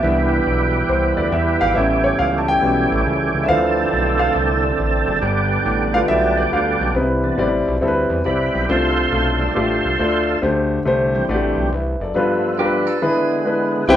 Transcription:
Already playing: G4 E5
0.03 C2 E3 G3 B3 D4 E4
0.47 B1
0.89 C2 C5
1.17 D2 D5
1.32 E2 E5
1.61 G#1 F5
1.74 A1 G3 A3 B3 C#4 E5
2.04 C#5
2.19 C#2 F5
2.38 A5
2.48 G5
2.61 B1 G3 B3 C#4
2.91 A1
3.06 C#2
3.34 C#2
3.44 D3 A3 C4 D4 A4 E5
3.48 D2 E3 F3 C4 F5
3.93 B1
4.19 F5
4.36 C2
4.79 A1
5.07 F#1
5.22 G1 G3 B3 G4
5.65 A1
5.93 A3 B3 F4 F5
6.08 B1 E5
6.37 D5
6.53 D2 F5
6.81 B1
6.94 C2 C3 G3 C4 D#4 B4
7.01 E4
7.24 E3 B3 D4
7.38 A1 G3 C4 E4 D5
7.68 B1
7.81 D2 G3 C4 E4 A4
7.88 B4
8.10 E2
8.24 C2 G3 C4 E4 G4 B4 D5
8.55 B1
8.69 C2 C3 A3 D4 F4 A4 C5
9.12 B1 A3 D4 F4 A4
9.39 G3 A3 D4
9.55 A1 A3 D4 F4 G4 A4 C5
9.85 C2
9.99 D2 A3 D4 F4 D5
10.42 D2 D3 A3 D4 G4 C5
10.85 C2 A3 D4 G4 C5
11.15 E3 G3 C4
11.29 A1 A3 D4 F#4 D5
11.35 G4
11.57 B1
11.72 C2 B4 E5
12.00 F#1 A4 D5
12.14 G2 F3 G3 A3 B3 D4 F4 B4
12.58 G3 D4 F4 G4 A#4
12.65 B4
12.87 A4
13.02 D3 E3 G#3 B3 D4 E4 G#4 B4
13.45 G#3 D4 E4 B4
13.88 C2 C3 E3 G3 C4 E4 G4 B4 C5 G5

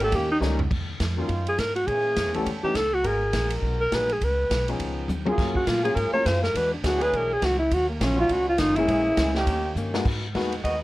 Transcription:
Already playing: G#1
0.00 D#3 A#3 C#4 G4 A4, ride
0.12 D#2 D#3 A#3 C#4 G4, kick, ride
0.16 G4
0.32 D#4
0.41 C#2 D#3 G3 A#3 C#4 D#4, snare, hi-hat pedal
0.45 G4
0.59 floor tom
0.71 D#2, kick, crash
1.00 F2, kick, snare, hi-hat pedal, ride
1.17 D#3 F#3 A#3 C#4 F4
1.29 F#2, kick, ride
1.47 G#4, ride
1.58 G#2 A#4, kick, snare, hi-hat pedal, ride
1.75 F#4, ride
1.87 A#2 E3 A#3 C#4 G#4, kick, ride
2.16 F#2, kick, snare, hi-hat pedal, ride
2.27 E2
2.34 C#2 E3 G3 A3 B3 C#4 G4 A4, ride
2.46 E2, kick, ride
2.63 E3 A3 B3 C#4 D#4 G4, muted upright bass stroke
2.75 C#2 A4, kick, snare, hi-hat pedal, ride
2.94 F#4
3.03 G#1 G#3 B3 F#4 G#4 A#4, kick, ride
3.33 A#1, kick, snare, hi-hat pedal, ride
3.50 ride
3.62 B1, kick
3.81 A#4
3.92 A#1 F#3 A#3 B3 D#4 G#4 B4, kick, snare, hi-hat pedal, ride
4.09 G#4, ride
4.21 C#2 B4, kick, ride
4.50 B1, kick, snare, hi-hat pedal, ride
4.68 F3 B3 C#4 D#4 G#4, ride
4.80 C#2, kick, ride
5.08 D#2, hi-hat pedal, high tom
5.25 F#3 A#3 C#4 F4 G#4, high tom
5.38 F#2 F#3 A#3 F4 G#4, kick, snare, crash
5.55 F#4, kick
5.67 A#2 F#3 A#3 F4 G#4, kick, snare, hi-hat pedal, ride
5.82 F#3 A#3 C#4 F4 G#4, ride
5.95 G#2 F#3 A#3 F4 G#4 A#4, kick, ride
6.12 F#3 A#3 C#4 F4 A#4 C#5, muted upright bass stroke
6.25 F#2 F#3 A#3 F4 G#4 C5, kick, snare, hi-hat pedal, ride
6.43 A#4, snare
6.54 E2 E3 G#3 D4 F#4 B4, kick, ride
6.73 D4
6.83 D2 E3 F#3 G#3 B3 D4 E4 F#4 G#4, kick, snare, hi-hat pedal, ride
6.99 F#3 D4 E4 G#4 B4, ride
7.13 B1 E3 G#3 D4 F#4 A#4, kick, ride
7.33 G#4
7.42 C#2 E3 G#3 D4 F#4, kick, snare, hi-hat pedal, ride
7.59 E4
7.71 D#2 D#3 F#3 C#4 F4 F#4, kick, ride
7.89 A#3
8.00 A#1 D#3 F#3 C#4 F4, kick, snare, hi-hat pedal, ride
8.16 C#4 D#4 F4 F#4
8.20 F4
8.29 C#2 D#3 F#3 C#4 F4 F#4, kick, ride
8.49 F4
8.58 F#1 D#3 F#3 C#4 D#4 F4, kick, snare, hi-hat pedal, ride
8.76 G#3 A#3 C#4 E4 G#4, ride
8.88 A#1 A#2 E3 G#3 A#3 C#4 E4 G#4, kick, ride
9.17 C#2 A#2 G#3 C#4 E4, kick, snare, hi-hat pedal, ride
9.35 D#3 A#3 C#4 G4, snare
9.46 D#2 D#3 A#3 C#4 G4, kick, ride
9.75 G2 D#3 A#3 C#4 G4, hi-hat pedal
9.94 G#3 A#3 B3 D#4 F#4, snare
10.05 G#2 G#3 D#4 F#4 B4, kick, crash
10.34 E2 D#3 G#3 A#3 B3 D#4 F#4 B4, kick, snare, hi-hat pedal, ride
10.52 ride
10.64 D#2 D#3 G#3 B3 D#4 F#4 B4 D#5, kick, ride

